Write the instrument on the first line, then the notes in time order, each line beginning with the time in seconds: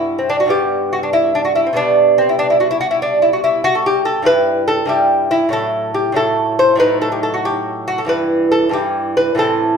lute
Already playing: G2 G3 B3 E4
0.19 C4
0.30 D4
0.40 F#4
0.46 G2 G3 B3
0.50 G4
0.93 F#4
1.03 D4
1.13 E4
1.35 D4
1.45 F#4
1.55 E4
1.67 C4
1.73 B2 G3 B3 D4
2.18 C4
2.29 E4
2.39 D4
2.50 E4
2.60 F#4
2.71 E4
2.81 F#4
2.91 E4
3.02 D4
3.22 E4
3.33 F#4
3.44 E4
3.64 F#4
3.75 A4
3.86 G4
4.05 A4
4.22 G2 G3 E4 B4
4.68 A4
4.86 G2 G3 E4 G4
5.31 E4
5.49 A2 F#3 E4 A4
5.94 G4
6.12 A2 F#3 E4
6.16 A4
6.59 C5
6.75 A2 F#3 D#4
6.80 B4
7.02 A4
7.12 G4
7.23 A4
7.34 F#4
7.45 G4
7.88 F#4
7.98 A4
8.05 G2 E3 E4
8.09 B4
8.52 A4
8.69 G2 E3 E4
8.73 G4
9.17 B4
9.35 A2 E3 C4
9.39 A4